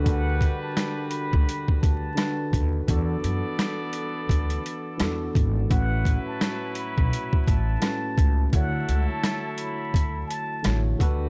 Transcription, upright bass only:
X:1
M:4/4
L:1/16
Q:"Swing 16ths" 1/4=85
K:D
V:1 name="Upright bass" clef=bass
D,,3 z4 C,, z2 D,,2 z2 ^D,,2 | E,,2 F,, z4 z D,,2 z2 E,,2 ^G,,,2 | A,,,3 z4 B,,, z2 A,,,2 z2 C,,2 | D,,2 C,, z4 z D,,2 z2 A,,,2 D,,2 |]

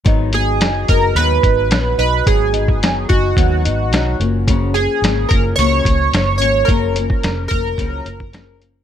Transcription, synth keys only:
X:1
M:4/4
L:1/8
Q:1/4=109
K:G#dor
V:1 name="Synth keys"
z G2 A B3 B | G3 F4 z | z G2 A c3 c | A3 A4 z |]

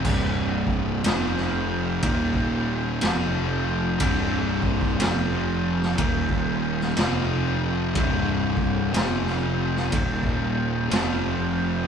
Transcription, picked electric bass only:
X:1
M:4/4
L:1/8
Q:"Swing" 1/4=61
K:Fdor
V:1 name="Picked electric bass" clef=bass
C,,,2 F,,,2 E,,,2 F,,,2 | C,,,2 F,,,2 E,,,2 F,,,2 | C,,,2 F,,,2 E,,,2 F,,,2 |]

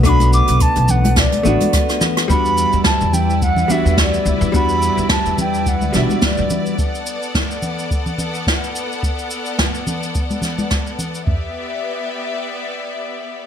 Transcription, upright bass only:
X:1
M:4/4
L:1/16
Q:"Swing 16ths" 1/4=107
K:Em
V:1 name="Upright bass" clef=bass
B,,,2 z B,,, z B,,,3 z2 A,,, z4 z | E,,2 z E,, z E,,4 z2 E,,2 z D,, E,,- | E,,2 z E,, z E,,4 D,, B,,, z2 E,, z2 | z16 |
z16 | z16 |]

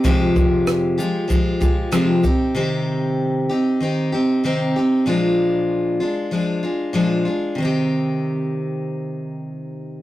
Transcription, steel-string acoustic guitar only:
X:1
M:4/4
L:1/8
Q:1/4=96
K:Cm
V:1 name="Steel-string acoustic guitar"
[F,,C,F,A,FG]3 [F,A,FG] [F,A,FG] [F,A,FG] [F,,C,F,A,FG] [CEG] | [C,E,CEG]3 [CEG] [E,CEG] [CEG] [C,E,CEG] [CEG] | [B,,F,A,DF]3 [A,DF] [F,A,DF] [A,DF] [B,,F,A,DF] [A,DF] | [C,E,CEG]8 |]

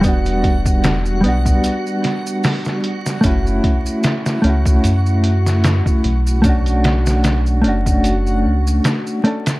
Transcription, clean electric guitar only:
X:1
M:4/4
L:1/16
Q:"Swing 16ths" 1/4=75
K:F#phr
V:1 name="Clean electric guitar"
[G,B,DF]6 [G,B,DF]8- [G,B,DF]2 | [A,CEF]6 [A,CEF]8- [A,CEF]2 | [A,CDF]6 [A,CDF]8 [A,CDA] z |]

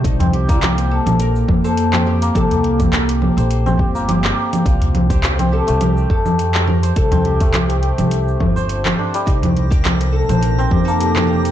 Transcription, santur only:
X:1
M:4/4
L:1/16
Q:"Swing 16ths" 1/4=104
K:Cdor
V:1 name="Santur"
z C G B, G z6 c z C G B, | G z6 c z C G B, G z3 | z3 c z C G A, G z6 c | z C G A, G z4 z A, c z c D G, |
G z6 c z C G B, G z3 |]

